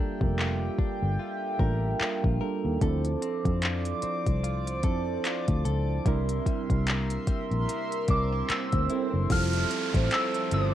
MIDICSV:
0, 0, Header, 1, 9, 480
1, 0, Start_track
1, 0, Key_signature, -1, "major"
1, 0, Tempo, 810811
1, 1666, Time_signature, 4, 2, 24, 8
1, 6358, End_track
2, 0, Start_track
2, 0, Title_t, "Synth bell"
2, 0, Program_c, 0, 98
2, 4797, Note_on_c, 0, 86, 76
2, 5036, Note_on_c, 0, 88, 83
2, 5038, Note_off_c, 0, 86, 0
2, 5487, Note_off_c, 0, 88, 0
2, 5517, Note_on_c, 0, 89, 95
2, 5997, Note_on_c, 0, 88, 85
2, 6006, Note_off_c, 0, 89, 0
2, 6215, Note_off_c, 0, 88, 0
2, 6238, Note_on_c, 0, 86, 90
2, 6358, Note_off_c, 0, 86, 0
2, 6358, End_track
3, 0, Start_track
3, 0, Title_t, "Analog synth pad"
3, 0, Program_c, 1, 89
3, 0, Note_on_c, 1, 67, 83
3, 0, Note_on_c, 1, 76, 74
3, 0, Note_on_c, 1, 79, 88
3, 442, Note_off_c, 1, 76, 0
3, 467, Note_on_c, 1, 76, 76
3, 1644, Note_off_c, 1, 67, 0
3, 1645, Note_off_c, 1, 79, 0
3, 1654, Note_off_c, 1, 76, 0
3, 1666, Note_on_c, 1, 72, 87
3, 1666, Note_on_c, 1, 74, 74
3, 1666, Note_on_c, 1, 86, 95
3, 3567, Note_off_c, 1, 72, 0
3, 3567, Note_off_c, 1, 74, 0
3, 3567, Note_off_c, 1, 86, 0
3, 3588, Note_on_c, 1, 76, 78
3, 3588, Note_on_c, 1, 84, 95
3, 3589, Note_on_c, 1, 70, 86
3, 5488, Note_off_c, 1, 70, 0
3, 5488, Note_off_c, 1, 76, 0
3, 5488, Note_off_c, 1, 84, 0
3, 5507, Note_on_c, 1, 53, 84
3, 5507, Note_on_c, 1, 72, 83
3, 5508, Note_on_c, 1, 81, 94
3, 6358, Note_off_c, 1, 53, 0
3, 6358, Note_off_c, 1, 72, 0
3, 6358, Note_off_c, 1, 81, 0
3, 6358, End_track
4, 0, Start_track
4, 0, Title_t, "Clean electric guitar"
4, 0, Program_c, 2, 27
4, 0, Note_on_c, 2, 55, 81
4, 0, Note_on_c, 2, 62, 59
4, 0, Note_on_c, 2, 70, 69
4, 226, Note_on_c, 2, 65, 57
4, 463, Note_off_c, 2, 62, 0
4, 466, Note_on_c, 2, 62, 59
4, 704, Note_off_c, 2, 65, 0
4, 706, Note_on_c, 2, 65, 61
4, 939, Note_off_c, 2, 70, 0
4, 946, Note_on_c, 2, 70, 64
4, 1185, Note_off_c, 2, 65, 0
4, 1187, Note_on_c, 2, 65, 62
4, 1419, Note_off_c, 2, 70, 0
4, 1426, Note_on_c, 2, 70, 69
4, 1666, Note_off_c, 2, 55, 0
4, 1666, Note_off_c, 2, 70, 0
4, 1670, Note_on_c, 2, 69, 70
4, 1904, Note_off_c, 2, 62, 0
4, 1906, Note_on_c, 2, 60, 59
4, 2144, Note_off_c, 2, 65, 0
4, 2146, Note_on_c, 2, 65, 61
4, 2383, Note_off_c, 2, 60, 0
4, 2386, Note_on_c, 2, 60, 57
4, 2618, Note_off_c, 2, 65, 0
4, 2626, Note_on_c, 2, 65, 60
4, 2858, Note_off_c, 2, 69, 0
4, 2865, Note_on_c, 2, 69, 65
4, 3099, Note_off_c, 2, 65, 0
4, 3106, Note_on_c, 2, 65, 61
4, 3338, Note_off_c, 2, 69, 0
4, 3345, Note_on_c, 2, 69, 68
4, 3586, Note_off_c, 2, 65, 0
4, 3587, Note_on_c, 2, 48, 79
4, 3590, Note_on_c, 2, 64, 66
4, 3641, Note_off_c, 2, 69, 0
4, 3827, Note_on_c, 2, 55, 55
4, 4065, Note_off_c, 2, 60, 0
4, 4068, Note_on_c, 2, 58, 59
4, 4301, Note_off_c, 2, 55, 0
4, 4308, Note_on_c, 2, 55, 59
4, 4540, Note_off_c, 2, 58, 0
4, 4547, Note_on_c, 2, 58, 59
4, 4785, Note_off_c, 2, 64, 0
4, 4787, Note_on_c, 2, 62, 62
4, 4927, Note_off_c, 2, 62, 0
4, 4927, Note_on_c, 2, 64, 59
4, 5021, Note_off_c, 2, 58, 0
4, 5028, Note_on_c, 2, 58, 59
4, 5260, Note_off_c, 2, 64, 0
4, 5267, Note_on_c, 2, 64, 72
4, 5506, Note_off_c, 2, 55, 0
4, 5507, Note_off_c, 2, 48, 0
4, 5508, Note_on_c, 2, 53, 83
4, 5563, Note_off_c, 2, 58, 0
4, 5645, Note_off_c, 2, 64, 0
4, 5648, Note_on_c, 2, 64, 64
4, 5747, Note_on_c, 2, 60, 61
4, 5880, Note_off_c, 2, 64, 0
4, 5887, Note_on_c, 2, 64, 61
4, 5980, Note_off_c, 2, 60, 0
4, 5987, Note_on_c, 2, 60, 60
4, 6119, Note_off_c, 2, 64, 0
4, 6126, Note_on_c, 2, 64, 60
4, 6220, Note_off_c, 2, 60, 0
4, 6228, Note_on_c, 2, 60, 59
4, 6358, Note_off_c, 2, 53, 0
4, 6358, Note_off_c, 2, 60, 0
4, 6358, Note_off_c, 2, 64, 0
4, 6358, End_track
5, 0, Start_track
5, 0, Title_t, "Synth keys"
5, 0, Program_c, 3, 88
5, 0, Control_c, 3, 64, 127
5, 0, Note_on_c, 3, 55, 88
5, 0, Note_on_c, 3, 58, 81
5, 0, Note_on_c, 3, 62, 81
5, 0, Note_on_c, 3, 65, 80
5, 0, Note_on_c, 3, 69, 95
5, 126, Note_off_c, 3, 55, 0
5, 126, Note_on_c, 3, 55, 72
5, 128, Note_off_c, 3, 58, 0
5, 128, Note_on_c, 3, 58, 70
5, 131, Note_off_c, 3, 62, 0
5, 131, Note_on_c, 3, 62, 69
5, 134, Note_off_c, 3, 65, 0
5, 134, Note_on_c, 3, 65, 70
5, 137, Note_on_c, 3, 70, 84
5, 665, Note_off_c, 3, 55, 0
5, 666, Note_off_c, 3, 58, 0
5, 668, Note_off_c, 3, 62, 0
5, 669, Note_off_c, 3, 65, 0
5, 671, Note_off_c, 3, 70, 0
5, 946, Note_on_c, 3, 55, 79
5, 948, Note_on_c, 3, 58, 73
5, 952, Note_on_c, 3, 62, 77
5, 954, Note_on_c, 3, 65, 69
5, 957, Note_on_c, 3, 70, 84
5, 1273, Note_off_c, 3, 55, 0
5, 1274, Note_off_c, 3, 58, 0
5, 1276, Note_off_c, 3, 62, 0
5, 1277, Note_off_c, 3, 65, 0
5, 1279, Note_off_c, 3, 70, 0
5, 1425, Note_on_c, 3, 55, 78
5, 1429, Note_on_c, 3, 58, 67
5, 1431, Note_on_c, 3, 62, 73
5, 1434, Note_on_c, 3, 65, 70
5, 1437, Note_off_c, 3, 69, 0
5, 1437, Note_on_c, 3, 69, 87
5, 1596, Note_off_c, 3, 55, 0
5, 1598, Note_off_c, 3, 58, 0
5, 1599, Note_off_c, 3, 62, 0
5, 1601, Note_off_c, 3, 65, 0
5, 1602, Note_off_c, 3, 69, 0
5, 1665, Note_on_c, 3, 53, 98
5, 1668, Note_on_c, 3, 60, 93
5, 1671, Note_on_c, 3, 62, 96
5, 1674, Control_c, 3, 64, 0
5, 1674, Note_on_c, 3, 64, 95
5, 1677, Note_on_c, 3, 69, 113
5, 1791, Control_c, 3, 64, 127
5, 1902, Note_off_c, 3, 53, 0
5, 1904, Note_off_c, 3, 60, 0
5, 1905, Note_off_c, 3, 62, 0
5, 1907, Note_off_c, 3, 64, 0
5, 1908, Note_off_c, 3, 69, 0
5, 2047, Note_on_c, 3, 53, 77
5, 2049, Note_on_c, 3, 60, 64
5, 2052, Note_on_c, 3, 62, 68
5, 2055, Note_on_c, 3, 64, 67
5, 2058, Note_on_c, 3, 69, 82
5, 2586, Note_off_c, 3, 53, 0
5, 2587, Note_off_c, 3, 60, 0
5, 2589, Note_off_c, 3, 62, 0
5, 2590, Note_off_c, 3, 64, 0
5, 2591, Note_off_c, 3, 69, 0
5, 2865, Note_on_c, 3, 53, 78
5, 2869, Note_on_c, 3, 60, 72
5, 2872, Note_on_c, 3, 62, 68
5, 2874, Note_on_c, 3, 64, 70
5, 2878, Note_on_c, 3, 69, 87
5, 3339, Note_off_c, 3, 53, 0
5, 3341, Note_off_c, 3, 60, 0
5, 3342, Note_off_c, 3, 62, 0
5, 3344, Note_off_c, 3, 64, 0
5, 3345, Note_off_c, 3, 69, 0
5, 3588, Note_on_c, 3, 55, 104
5, 3590, Note_on_c, 3, 60, 91
5, 3592, Note_on_c, 3, 62, 92
5, 3593, Control_c, 3, 64, 0
5, 3596, Note_on_c, 3, 64, 96
5, 3599, Note_on_c, 3, 70, 114
5, 3701, Control_c, 3, 64, 127
5, 3824, Note_off_c, 3, 55, 0
5, 3825, Note_off_c, 3, 60, 0
5, 3826, Note_off_c, 3, 62, 0
5, 3828, Note_off_c, 3, 64, 0
5, 3829, Note_off_c, 3, 70, 0
5, 3966, Note_on_c, 3, 55, 74
5, 3969, Note_on_c, 3, 60, 68
5, 3973, Note_on_c, 3, 62, 69
5, 3975, Note_on_c, 3, 64, 64
5, 3978, Note_on_c, 3, 70, 86
5, 4505, Note_off_c, 3, 55, 0
5, 4507, Note_off_c, 3, 60, 0
5, 4509, Note_off_c, 3, 62, 0
5, 4510, Note_off_c, 3, 64, 0
5, 4511, Note_off_c, 3, 70, 0
5, 4787, Note_on_c, 3, 55, 80
5, 4790, Note_on_c, 3, 60, 70
5, 4793, Note_on_c, 3, 62, 72
5, 4795, Note_on_c, 3, 64, 73
5, 4799, Note_on_c, 3, 70, 83
5, 5114, Note_off_c, 3, 55, 0
5, 5115, Note_off_c, 3, 60, 0
5, 5116, Note_off_c, 3, 62, 0
5, 5118, Note_off_c, 3, 64, 0
5, 5119, Note_off_c, 3, 70, 0
5, 5267, Note_on_c, 3, 55, 77
5, 5270, Note_on_c, 3, 60, 71
5, 5273, Note_on_c, 3, 62, 70
5, 5276, Note_on_c, 3, 64, 72
5, 5279, Note_on_c, 3, 69, 83
5, 5437, Note_off_c, 3, 55, 0
5, 5439, Note_off_c, 3, 60, 0
5, 5440, Note_off_c, 3, 62, 0
5, 5442, Note_off_c, 3, 64, 0
5, 5443, Note_off_c, 3, 69, 0
5, 5509, Note_on_c, 3, 55, 92
5, 5512, Note_on_c, 3, 60, 86
5, 5514, Control_c, 3, 64, 0
5, 5514, Note_on_c, 3, 64, 85
5, 5517, Note_on_c, 3, 65, 91
5, 5520, Note_on_c, 3, 69, 105
5, 5609, Control_c, 3, 64, 127
5, 5744, Note_off_c, 3, 55, 0
5, 5746, Note_off_c, 3, 60, 0
5, 5747, Note_off_c, 3, 64, 0
5, 5749, Note_off_c, 3, 65, 0
5, 5750, Note_off_c, 3, 69, 0
5, 5887, Note_on_c, 3, 55, 75
5, 5890, Note_on_c, 3, 60, 66
5, 5893, Note_on_c, 3, 64, 67
5, 5895, Note_on_c, 3, 65, 70
5, 5899, Note_on_c, 3, 72, 81
5, 6122, Note_off_c, 3, 55, 0
5, 6123, Note_off_c, 3, 60, 0
5, 6125, Note_off_c, 3, 64, 0
5, 6126, Note_off_c, 3, 65, 0
5, 6128, Note_off_c, 3, 72, 0
5, 6229, Note_on_c, 3, 55, 74
5, 6231, Note_on_c, 3, 60, 68
5, 6235, Note_on_c, 3, 64, 69
5, 6237, Note_on_c, 3, 65, 70
5, 6240, Note_on_c, 3, 70, 66
5, 6278, Note_off_c, 3, 70, 0
5, 6279, Note_on_c, 3, 72, 80
5, 6358, Note_off_c, 3, 55, 0
5, 6358, Note_off_c, 3, 60, 0
5, 6358, Note_off_c, 3, 64, 0
5, 6358, Note_off_c, 3, 65, 0
5, 6358, Note_off_c, 3, 72, 0
5, 6358, End_track
6, 0, Start_track
6, 0, Title_t, "Fingered electric bass"
6, 0, Program_c, 4, 33
6, 125, Note_on_c, 4, 29, 88
6, 402, Note_off_c, 4, 29, 0
6, 606, Note_on_c, 4, 31, 85
6, 687, Note_off_c, 4, 31, 0
6, 944, Note_on_c, 4, 33, 88
6, 1140, Note_off_c, 4, 33, 0
6, 1326, Note_on_c, 4, 34, 85
6, 1408, Note_off_c, 4, 34, 0
6, 1566, Note_on_c, 4, 39, 81
6, 1648, Note_off_c, 4, 39, 0
6, 1666, Note_on_c, 4, 38, 114
6, 1861, Note_off_c, 4, 38, 0
6, 2045, Note_on_c, 4, 41, 89
6, 2322, Note_off_c, 4, 41, 0
6, 2527, Note_on_c, 4, 36, 78
6, 2864, Note_off_c, 4, 36, 0
6, 2864, Note_on_c, 4, 41, 83
6, 3060, Note_off_c, 4, 41, 0
6, 3247, Note_on_c, 4, 38, 84
6, 3328, Note_off_c, 4, 38, 0
6, 3346, Note_on_c, 4, 37, 83
6, 3541, Note_off_c, 4, 37, 0
6, 3587, Note_on_c, 4, 36, 104
6, 3782, Note_off_c, 4, 36, 0
6, 3966, Note_on_c, 4, 36, 89
6, 4243, Note_off_c, 4, 36, 0
6, 4446, Note_on_c, 4, 34, 83
6, 4527, Note_off_c, 4, 34, 0
6, 4785, Note_on_c, 4, 36, 91
6, 4981, Note_off_c, 4, 36, 0
6, 5167, Note_on_c, 4, 38, 78
6, 5248, Note_off_c, 4, 38, 0
6, 5408, Note_on_c, 4, 30, 81
6, 5489, Note_off_c, 4, 30, 0
6, 5507, Note_on_c, 4, 29, 112
6, 5702, Note_off_c, 4, 29, 0
6, 5886, Note_on_c, 4, 33, 83
6, 5968, Note_off_c, 4, 33, 0
6, 6228, Note_on_c, 4, 31, 88
6, 6358, Note_off_c, 4, 31, 0
6, 6358, End_track
7, 0, Start_track
7, 0, Title_t, "Downlifter"
7, 0, Program_c, 5, 103
7, 5507, Note_on_c, 5, 60, 87
7, 6358, Note_off_c, 5, 60, 0
7, 6358, End_track
8, 0, Start_track
8, 0, Title_t, "Muted fingered electric bass strokes"
8, 464, Note_on_c, 9, 29, 46
8, 524, Note_off_c, 9, 29, 0
8, 1187, Note_on_c, 9, 29, 50
8, 1246, Note_off_c, 9, 29, 0
8, 2386, Note_on_c, 9, 29, 44
8, 2446, Note_off_c, 9, 29, 0
8, 4306, Note_on_c, 9, 29, 44
8, 4365, Note_off_c, 9, 29, 0
8, 5029, Note_on_c, 9, 29, 49
8, 5088, Note_off_c, 9, 29, 0
8, 6358, End_track
9, 0, Start_track
9, 0, Title_t, "Drums"
9, 124, Note_on_c, 9, 36, 95
9, 184, Note_off_c, 9, 36, 0
9, 233, Note_on_c, 9, 39, 110
9, 292, Note_off_c, 9, 39, 0
9, 464, Note_on_c, 9, 36, 87
9, 523, Note_off_c, 9, 36, 0
9, 943, Note_on_c, 9, 36, 99
9, 1002, Note_off_c, 9, 36, 0
9, 1190, Note_on_c, 9, 39, 106
9, 1249, Note_off_c, 9, 39, 0
9, 1326, Note_on_c, 9, 36, 92
9, 1385, Note_off_c, 9, 36, 0
9, 1666, Note_on_c, 9, 36, 111
9, 1666, Note_on_c, 9, 42, 60
9, 1725, Note_off_c, 9, 36, 0
9, 1725, Note_off_c, 9, 42, 0
9, 1803, Note_on_c, 9, 42, 47
9, 1863, Note_off_c, 9, 42, 0
9, 1908, Note_on_c, 9, 42, 68
9, 1967, Note_off_c, 9, 42, 0
9, 2045, Note_on_c, 9, 36, 94
9, 2046, Note_on_c, 9, 42, 50
9, 2104, Note_off_c, 9, 36, 0
9, 2105, Note_off_c, 9, 42, 0
9, 2144, Note_on_c, 9, 42, 70
9, 2153, Note_on_c, 9, 39, 113
9, 2203, Note_off_c, 9, 42, 0
9, 2212, Note_off_c, 9, 39, 0
9, 2282, Note_on_c, 9, 42, 46
9, 2342, Note_off_c, 9, 42, 0
9, 2383, Note_on_c, 9, 42, 67
9, 2442, Note_off_c, 9, 42, 0
9, 2526, Note_on_c, 9, 36, 84
9, 2526, Note_on_c, 9, 42, 52
9, 2585, Note_off_c, 9, 42, 0
9, 2586, Note_off_c, 9, 36, 0
9, 2630, Note_on_c, 9, 42, 65
9, 2689, Note_off_c, 9, 42, 0
9, 2767, Note_on_c, 9, 42, 53
9, 2826, Note_off_c, 9, 42, 0
9, 2860, Note_on_c, 9, 42, 60
9, 2864, Note_on_c, 9, 36, 94
9, 2920, Note_off_c, 9, 42, 0
9, 2923, Note_off_c, 9, 36, 0
9, 3109, Note_on_c, 9, 42, 65
9, 3111, Note_on_c, 9, 39, 104
9, 3168, Note_off_c, 9, 42, 0
9, 3170, Note_off_c, 9, 39, 0
9, 3244, Note_on_c, 9, 42, 52
9, 3246, Note_on_c, 9, 36, 88
9, 3303, Note_off_c, 9, 42, 0
9, 3306, Note_off_c, 9, 36, 0
9, 3347, Note_on_c, 9, 42, 55
9, 3407, Note_off_c, 9, 42, 0
9, 3586, Note_on_c, 9, 36, 112
9, 3587, Note_on_c, 9, 42, 59
9, 3646, Note_off_c, 9, 36, 0
9, 3646, Note_off_c, 9, 42, 0
9, 3724, Note_on_c, 9, 42, 49
9, 3783, Note_off_c, 9, 42, 0
9, 3826, Note_on_c, 9, 36, 96
9, 3828, Note_on_c, 9, 42, 67
9, 3886, Note_off_c, 9, 36, 0
9, 3887, Note_off_c, 9, 42, 0
9, 3965, Note_on_c, 9, 36, 89
9, 3967, Note_on_c, 9, 42, 48
9, 4024, Note_off_c, 9, 36, 0
9, 4026, Note_off_c, 9, 42, 0
9, 4065, Note_on_c, 9, 42, 66
9, 4074, Note_on_c, 9, 39, 114
9, 4125, Note_off_c, 9, 42, 0
9, 4134, Note_off_c, 9, 39, 0
9, 4204, Note_on_c, 9, 42, 46
9, 4263, Note_off_c, 9, 42, 0
9, 4304, Note_on_c, 9, 42, 61
9, 4305, Note_on_c, 9, 36, 88
9, 4363, Note_off_c, 9, 42, 0
9, 4364, Note_off_c, 9, 36, 0
9, 4448, Note_on_c, 9, 42, 50
9, 4507, Note_off_c, 9, 42, 0
9, 4551, Note_on_c, 9, 42, 66
9, 4610, Note_off_c, 9, 42, 0
9, 4688, Note_on_c, 9, 42, 52
9, 4747, Note_off_c, 9, 42, 0
9, 4781, Note_on_c, 9, 42, 61
9, 4784, Note_on_c, 9, 36, 91
9, 4840, Note_off_c, 9, 42, 0
9, 4844, Note_off_c, 9, 36, 0
9, 5029, Note_on_c, 9, 42, 64
9, 5031, Note_on_c, 9, 39, 103
9, 5088, Note_off_c, 9, 42, 0
9, 5090, Note_off_c, 9, 39, 0
9, 5164, Note_on_c, 9, 42, 48
9, 5167, Note_on_c, 9, 36, 89
9, 5223, Note_off_c, 9, 42, 0
9, 5226, Note_off_c, 9, 36, 0
9, 5266, Note_on_c, 9, 42, 55
9, 5325, Note_off_c, 9, 42, 0
9, 5506, Note_on_c, 9, 42, 64
9, 5507, Note_on_c, 9, 36, 122
9, 5565, Note_off_c, 9, 42, 0
9, 5566, Note_off_c, 9, 36, 0
9, 5644, Note_on_c, 9, 42, 48
9, 5703, Note_off_c, 9, 42, 0
9, 5747, Note_on_c, 9, 42, 73
9, 5807, Note_off_c, 9, 42, 0
9, 5885, Note_on_c, 9, 36, 97
9, 5886, Note_on_c, 9, 42, 51
9, 5945, Note_off_c, 9, 36, 0
9, 5946, Note_off_c, 9, 42, 0
9, 5985, Note_on_c, 9, 42, 70
9, 5994, Note_on_c, 9, 39, 115
9, 6044, Note_off_c, 9, 42, 0
9, 6053, Note_off_c, 9, 39, 0
9, 6124, Note_on_c, 9, 42, 49
9, 6183, Note_off_c, 9, 42, 0
9, 6224, Note_on_c, 9, 42, 67
9, 6284, Note_off_c, 9, 42, 0
9, 6358, End_track
0, 0, End_of_file